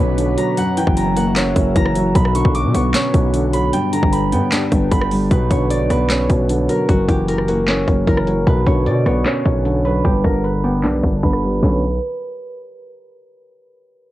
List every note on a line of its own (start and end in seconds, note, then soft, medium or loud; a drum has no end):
0.00 0.36 B1 loud
0.00 0.60 B2 loud
0.00 0.16 D3 medium
0.00 0.56 B3 medium
0.00 0.57 B3 medium
0.00 0.57 C#4 loud
0.00 3.69 F#4 medium
0.00 0.56 B4 medium
0.00 0.56 C#5 medium
0.00 0.44 B5 medium
0.00 0.61 D6 medium
0.18 0.57 D3 medium
0.18 closed hi-hat medium
0.37 0.57 F#3 medium
0.37 0.97 A#5 medium
0.37 closed hi-hat medium
0.57 1.54 F#2 medium
0.57 2.14 F#3 medium
0.57 2.14 A#4 medium
0.57 2.14 E5 medium
0.57 0.83 F#5 loud
0.57 closed hi-hat medium
0.77 1.74 E3 medium
0.77 1.23 G5 medium
0.77 closed hi-hat medium
0.87 1.53 F#1 loud
0.87 kick loud
0.97 1.75 A#5 medium
0.97 closed hi-hat medium
1.17 2.15 A#3 medium
1.17 2.77 F#5 medium
1.17 closed hi-hat medium
1.36 2.15 C#4 loud
1.36 snare loud
1.36 clap loud
1.36 closed hi-hat medium
1.56 1.75 F#1 loud
1.56 2.15 F#2 medium
1.56 kick loud
1.56 closed hi-hat medium
1.76 2.14 F#1 loud
1.76 2.15 E3 medium
1.76 2.21 A#5 medium
1.76 kick loud
1.76 closed hi-hat medium
1.86 cross-stick loud
1.95 2.15 F#3 medium
1.95 closed hi-hat medium
2.15 2.44 B1 loud
2.15 3.13 B2 medium
2.15 3.72 B3 medium
2.15 3.72 C#5 medium
2.15 3.50 B5 medium
2.15 kick loud
2.15 closed hi-hat medium
2.25 cross-stick loud
2.35 3.32 D3 medium
2.35 2.61 C#6 medium
2.35 closed hi-hat medium
2.45 2.66 B1 loud
2.45 kick loud
2.55 2.80 D6 medium
2.55 closed hi-hat medium
2.65 2.74 B2 loud
2.74 2.93 B1 loud
2.74 3.73 B3 medium
2.74 4.01 C#6 medium
2.74 closed hi-hat medium
2.94 3.73 C#4 loud
2.94 snare loud
2.94 clap loud
2.94 closed hi-hat medium
3.14 3.71 B1 loud
3.14 3.73 B2 medium
3.14 kick loud
3.14 closed hi-hat medium
3.34 3.73 D3 medium
3.34 closed hi-hat medium
3.53 3.73 F#3 medium
3.53 3.99 B5 medium
3.53 closed hi-hat medium
3.73 4.70 G2 medium
3.73 5.29 G3 medium
3.73 5.29 G4 medium
3.73 5.29 B4 medium
3.73 4.32 G5 medium
3.73 closed hi-hat medium
3.93 4.90 D3 medium
3.93 4.18 A#5 medium
3.93 closed hi-hat medium
4.03 4.34 G1 loud
4.03 kick loud
4.12 4.91 B5 medium
4.12 closed hi-hat medium
4.32 4.42 G2 loud
4.32 5.31 B3 medium
4.32 5.87 G5 medium
4.32 closed hi-hat medium
4.52 5.31 D4 loud
4.52 snare loud
4.52 clap loud
4.52 closed hi-hat medium
4.72 4.91 G1 loud
4.72 5.31 G2 medium
4.72 kick loud
4.72 closed hi-hat medium
4.91 5.29 G1 loud
4.91 5.31 D3 medium
4.91 6.27 B5 medium
4.91 kick loud
4.91 closed hi-hat medium
5.01 cross-stick loud
5.11 5.31 G3 medium
5.11 open hi-hat medium
5.31 5.50 B1 loud
5.31 6.28 B2 medium
5.31 5.90 B4 medium
5.31 kick loud
5.31 closed hi-hat medium
5.51 5.72 B1 loud
5.51 6.48 D3 medium
5.51 5.76 C#5 medium
5.51 kick medium
5.51 closed hi-hat medium
5.70 5.82 A#1 loud
5.70 7.55 D5 medium
5.70 closed hi-hat medium
5.80 5.90 B1 loud
5.90 6.28 B1 loud
5.90 6.89 B3 medium
5.90 6.75 B4 medium
5.90 cross-stick medium
5.90 closed hi-hat medium
6.10 6.89 C#4 medium
6.10 snare loud
6.10 clap loud
6.10 closed hi-hat medium
6.30 6.68 B1 loud
6.30 6.89 B2 medium
6.30 kick loud
6.30 closed hi-hat medium
6.49 6.89 D3 medium
6.49 closed hi-hat medium
6.69 6.89 F#3 medium
6.69 7.28 A#4 medium
6.69 closed hi-hat medium
6.89 7.08 F#1 loud
6.89 7.86 F#2 medium
6.89 7.15 F#4 loud
6.89 kick loud
6.89 closed hi-hat medium
7.09 7.84 F#1 loud
7.09 8.06 E3 medium
7.09 7.54 G4 medium
7.09 kick loud
7.09 closed hi-hat medium
7.28 8.07 A#4 medium
7.28 closed hi-hat medium
7.38 cross-stick medium
7.48 8.47 A#3 medium
7.48 9.92 F#4 medium
7.48 closed hi-hat medium
7.68 8.47 C#4 medium
7.68 snare loud
7.68 clap loud
7.68 closed hi-hat medium
7.88 8.07 F#1 loud
7.88 8.47 F#2 medium
7.88 kick loud
7.88 closed hi-hat medium
8.07 8.45 F#1 loud
8.07 8.47 E3 medium
8.07 8.53 A#4 medium
8.07 kick medium
8.07 closed hi-hat medium
8.17 cross-stick loud
8.27 8.47 F#3 medium
8.27 closed hi-hat medium
8.47 8.66 B1 loud
8.47 9.44 B2 medium
8.47 9.84 B4 medium
8.47 kick loud
8.47 closed hi-hat medium
8.66 8.88 B1 loud
8.66 9.64 D3 medium
8.66 8.92 C#5 medium
8.66 kick loud
8.66 closed hi-hat medium
8.86 9.05 B2 loud
8.86 9.12 D5 medium
8.86 closed hi-hat medium
9.06 9.25 B1 loud
9.06 10.05 B3 medium
9.06 10.97 C#5 medium
9.06 cross-stick medium
9.06 closed hi-hat medium
9.26 10.05 C#4 loud
9.26 snare loud
9.26 clap loud
9.26 closed hi-hat medium
9.46 10.02 B1 loud
9.46 10.05 B2 medium
9.46 kick loud
9.46 closed hi-hat medium
9.65 10.05 D3 medium
9.65 closed hi-hat medium
9.85 10.05 F#3 medium
9.85 10.30 B4 medium
9.85 closed hi-hat medium
10.05 10.24 G1 loud
10.05 11.02 G2 medium
10.05 10.22 G4 medium
10.05 kick loud
10.05 closed hi-hat medium
10.24 10.85 G1 loud
10.24 11.22 D3 medium
10.24 10.42 A#4 medium
10.24 kick loud
10.24 closed hi-hat medium
10.44 10.61 B4 medium
10.44 closed hi-hat medium
10.64 11.61 B3 medium
10.64 11.19 G4 medium
10.64 closed hi-hat medium
10.83 11.02 B1 loud
10.83 11.62 D4 loud
10.83 snare loud
10.83 clap medium
10.83 closed hi-hat medium
11.03 11.22 G1 loud
11.03 11.63 G2 medium
11.03 kick loud
11.03 closed hi-hat medium
11.23 11.61 G1 loud
11.23 11.61 D3 medium
11.23 11.60 B4 medium
11.23 kick loud
11.23 closed hi-hat medium
11.33 cross-stick loud
11.43 11.63 G3 medium
11.43 closed hi-hat medium
11.63 11.99 B1 loud
11.63 11.81 D3 medium
11.63 11.81 F#3 medium
11.63 11.81 B3 medium
11.63 11.81 C#4 loud
11.63 11.81 B4 medium
11.63 kick loud
11.63 snare loud